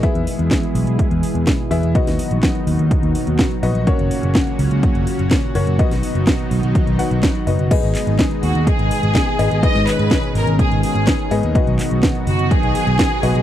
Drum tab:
CC |----------------|----------------|----------------|----------------|
HH |xxoxxxoxxxoxx-ox|xooxxxoxxxoxxxox|xxoxxxoxxxoxx-ox|xoo-xxoxxxoxxxox|
CP |----x-------x---|----x-------x---|----x-------x---|----x-------x---|
SD |----o-------o---|-o--o-------o---|----o-------o---|-o--o-------o---|
BD |o---o---o---o---|o---o---o---o---|o---o---o---o---|o---o---o---o---|

CC |x---------------|----------------|----------------|
HH |xxoxxxoxxxoxx-ox|xxoxxxoxxxoxxxox|xxoxxxoxxxoxx-ox|
CP |--x-x-------x---|--x-x-------x---|--x-x-------x---|
SD |----o-------o---|-o--o-------o---|----o-------o---|
BD |o---o---o---o---|o---o---o---o---|o---o---o---o---|